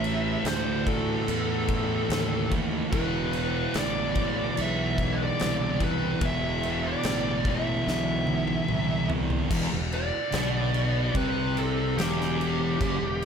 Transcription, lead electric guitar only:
0.00 0.48 E5 loud
0.46 0.84 C5 medium
0.87 2.47 A4 medium
2.92 3.77 B4 medium
3.78 4.61 D5 loud
4.61 5.15 E5 loud
5.13 5.19 B4 medium
5.23 5.83 D5 loud
5.83 6.24 B4 medium
6.25 6.87 E5 loud
6.87 7.48 D5 medium
7.50 7.86 E5 loud
7.90 9.08 E5 medium
9.93 11.13 D5 loud
11.17 11.56 B4 medium
11.58 11.98 A4 medium
11.98 13.25 G4 loud

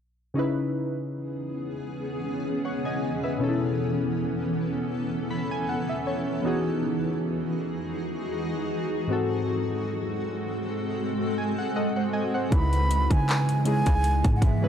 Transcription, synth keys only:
0.34 2.97 C#3 medium
0.34 2.98 C#4 medium
0.34 2.98 D#4 medium
0.38 2.99 E4 medium
0.38 2.62 B4 medium
2.65 2.85 C#5 medium
2.65 2.84 F#5 medium
2.85 3.22 D#5 medium
2.85 3.21 G#5 medium
3.24 3.60 B4 soft
3.24 3.59 E5 medium
3.38 6.39 B2 medium
3.38 6.40 B3 medium
3.38 6.41 C#4 medium
3.38 3.48 D#4 soft
3.44 6.42 A4 medium
3.49 6.44 E4 medium
5.31 5.50 B5 medium
5.51 5.67 G#5 medium
5.69 5.88 F#5 medium
5.89 6.05 E5 medium
6.07 6.42 C#5 medium
6.42 9.05 E3 medium
6.42 9.06 B3 medium
6.42 9.06 D#4 medium
6.42 9.07 F#4 medium
6.47 9.08 G#4 medium
9.07 12.09 G#2 medium
9.07 12.09 G#3 medium
9.07 12.10 C4 medium
9.11 12.11 F#4 medium
9.11 11.73 A4 medium
11.38 11.57 G#5 medium
11.58 11.75 F#5 medium
11.76 11.96 A4 medium
11.76 11.95 D#5 medium
11.76 11.95 F#5 medium
11.96 12.13 C5 medium
11.96 12.13 F#5 medium
12.13 12.34 D#5 medium
12.13 12.33 G#5 medium
12.34 12.71 C5 medium
12.34 12.70 F#5 medium
12.50 13.37 C#3 medium
12.50 13.37 G#3 medium
12.50 13.38 D#4 medium
12.50 13.38 E4 medium
12.50 13.38 B4 medium
13.65 14.37 C#3 medium
13.65 14.37 G#3 medium
13.65 14.37 D#4 medium
13.65 14.37 E4 medium
13.65 14.38 G#4 medium
14.62 14.68 C#3 medium
14.62 14.68 G#3 medium
14.62 14.68 C#4 medium
14.62 14.68 E4 medium
14.62 14.68 B4 medium

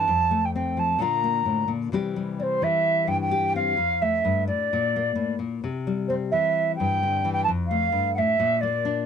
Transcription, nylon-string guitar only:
0.08 0.98 F2 medium
0.31 0.98 A3 medium
0.55 0.99 C4 medium
0.77 0.98 F3 medium
0.99 1.45 A#2 medium
0.99 1.93 D3 medium
0.99 1.23 A#3 medium
0.99 1.91 D4 medium
0.99 1.91 F4 medium
1.24 1.91 A#3 medium
1.45 1.67 A2 medium
1.68 1.92 A#2 medium
1.92 2.62 C3 medium
1.92 2.61 E3 medium
1.92 2.15 G3 medium
1.92 2.38 C4 medium
1.92 3.30 G4 medium
2.16 3.78 G3 medium
2.40 3.54 C4 medium
2.62 3.76 E3 medium
3.07 3.75 G2 medium
3.31 3.76 G4 medium
3.56 3.76 C4 medium
3.77 4.24 F2 medium
4.02 4.69 A3 medium
4.25 4.48 G2 medium
4.48 4.71 A2 medium
4.73 5.15 A#2 medium
4.96 5.62 A#3 medium
5.15 5.39 A2 medium
5.39 5.63 A#2 medium
5.64 6.33 C3 medium
5.87 7.49 G3 medium
6.10 7.46 C4 medium
6.33 7.02 E3 medium
6.80 7.46 G2 medium
7.03 7.24 D3 medium
7.25 7.48 E3 medium
7.48 7.92 F2 medium
7.71 8.38 A3 medium
7.92 8.17 G2 medium
8.18 8.39 A2 medium
8.40 9.06 A#2 medium
8.63 9.06 A#3 medium
8.85 9.06 D4 medium

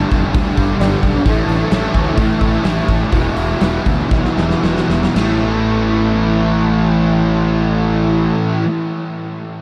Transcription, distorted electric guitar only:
0.00 0.33 G2 medium
0.00 0.34 D3 medium
0.00 0.35 G3 medium
0.34 0.77 G2 loud
0.34 0.57 D3 loud
0.34 0.55 G3 medium
0.57 0.79 D3 medium
0.57 0.79 G3 medium
0.79 1.24 G2 medium
0.79 1.24 D3 medium
0.79 1.25 G3 medium
1.25 1.69 A2 medium
1.25 1.72 E3 medium
1.25 1.72 A3 loud
1.71 2.16 A2 medium
1.71 2.18 E3 medium
1.71 2.18 A3 medium
2.17 2.63 A2 medium
2.17 2.42 E3 loud
2.17 2.40 A3 loud
2.41 2.65 E3 medium
2.41 2.65 A3 medium
2.64 3.11 A2 medium
2.64 3.12 E3 medium
2.64 3.12 A3 medium
3.11 3.59 E2 medium
3.11 3.60 B2 loud
3.11 3.61 E3 medium
3.60 4.10 E2 medium
3.60 4.10 B2 medium
3.60 4.11 E3 medium
4.11 4.61 E2 medium
4.11 4.37 B2 medium
4.11 4.35 E3 loud
4.36 4.62 B2 medium
4.36 4.63 E3 medium
4.62 5.14 E2 medium
4.62 5.14 B2 medium
4.62 5.15 E3 medium
5.14 8.64 A2 medium
5.14 8.66 E3 medium
5.14 8.68 A3 loud

